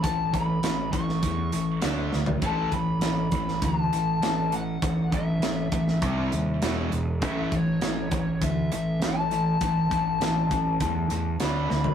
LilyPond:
<<
  \new Staff \with { instrumentName = "Lead electric guitar" } { \time 4/4 \key d \major \tempo 4 = 100 a''8 b''4 cis'''4. r4 | a''8 b''4. a''4. fis''8~ | fis''8 e''2. r8 | e''8 cis''4. e''8 e''8 a''4~ |
a''2. b''4 | }
  \new Staff \with { instrumentName = "Distorted electric guitar" } { \clef bass \time 4/4 \key d \major <a, e>8 <a, e>8 <a, e>8 <a, e>8 <a, e>8 <a, e>8 <d a d'>8 <d a>8 | <a, e a>8 <a, e>8 <a, e>8 <a, e>8 <a, e>8 <a, e>8 <a, e>8 <a, e>8 | <a, e>8 <a, e>8 <a, e>8 <a, e>8 <c g c'>8 <c g>8 <e, b, e>8 <e, b,>8 | <a, e a>8 <a, e>8 <a, e>8 <a, e>8 <a, e>8 <a, e>8 <a, e>8 <a, e>8 |
<a, e>8 <a, e>8 <a, e>8 <a, e>8 <a, e>8 <a, e>8 <d a d'>8 <d a>8 | }
  \new Staff \with { instrumentName = "Overdriven electric guitar" } { \clef bass \time 4/4 \key d \major <a, e>8 <a, e>8 <a, e>8 <a, e>8 <a, e>8 <a, e>8 <d a d'>8 <d a>8 | <a, e a>8 <a, e>8 <a, e>8 <a, e>8 <a, e>8 <a, e>8 <a, e>8 <a, e>8 | <a, e>8 <a, e>8 <a, e>8 <a, e>8 <c g c'>8 <c g>8 <e, b, e>8 <e, b,>8 | <a, e a>8 <a, e>8 <a, e>8 <a, e>8 <a, e>8 <a, e>8 <a, e>8 <a, e>8 |
<a, e>8 <a, e>8 <a, e>8 <a, e>8 <a, e>8 <a, e>8 <d a d'>8 <d a>8 | }
  \new Staff \with { instrumentName = "Fingered electric bass" } { \clef bass \time 4/4 \key d \major a,,8 a,,8 a,,8 a,,8 e,8 a,,8 d,8 d,8 | a,,8 a,,8 a,,8 a,,8 d,8 a,,8 a,,4 | a,,8 a,,8 a,,8 a,,8 c,8 dis,8 e,,8 e,,8 | a,,8 a,,8 a,,8 a,,8 d,8 a,,8 a,,4 |
a,,8 a,,8 a,,8 a,,8 e,8 e,8 d,8 d,8 | }
  \new DrumStaff \with { instrumentName = "Drums" } \drummode { \time 4/4 <hh bd>8 <hh bd>8 <hh sn>8 <hh bd>16 sn16 <hh bd>8 hh8 <hh sn>8 sn16 tomfh16 | <hh bd>8 <hh bd>8 <hh sn>8 <hh bd>16 sn16 <hh bd>8 hh8 <hh sn>8 hh8 | <hh bd>8 <hh bd>8 <hh sn>8 <hh bd>16 sn16 <hh bd>8 hh8 <hh sn>8 hh8 | <hh bd>8 <hh bd>8 <hh sn>8 <hh bd>8 <hh bd>8 hh8 <hh sn>8 hh8 |
<hh bd>8 <hh bd>8 <hh sn>8 <hh bd>8 <hh bd>8 hh8 <hh sn>8 sn16 tomfh16 | }
>>